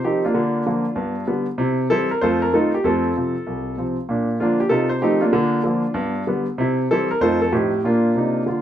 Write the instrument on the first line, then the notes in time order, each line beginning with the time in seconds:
grand piano
0.04 D#3 F3 C4 D#4 G4
0.25 A#3 D4 F4
0.34 D3
0.66 D3 F3 A#3
0.96 G2 B3
1.27 D3 G3 B3
1.58 C3 E4
1.90 E3 G3 C4 E4 A4
2.11 A#4
2.21 F2 A3 F4 A4 C5
2.42 A#4
2.53 D#3 A3 C4 D#4 F4 A4
2.74 G4
2.84 F2 A3 C4 F4 A4
3.16 C3 F3 C4
3.47 C2
3.77 C3 F3 C4
4.09 A#2 D4
4.40 D3 F3 A#3 D4 F4
4.60 G4
4.69 C3 D#4 F4 A4
4.89 C5
5.02 D#3 F3 A3 C4 D#4 G4
5.21 A#3 D4 F4
5.33 D3
5.64 D3 F3 A#3
5.94 G2 B3
6.27 D3 G3 B3
6.58 C3 E4
6.91 E3 G3 C4 E4 A4
7.11 A#4
7.21 F2 F3 A3 D#4 F4 A4 C5
7.42 A4
7.52 A2 F3 C4 D#4 G4
7.84 A#2 A#3 D4 F4
8.15 C3 D#4
8.46 D3 F4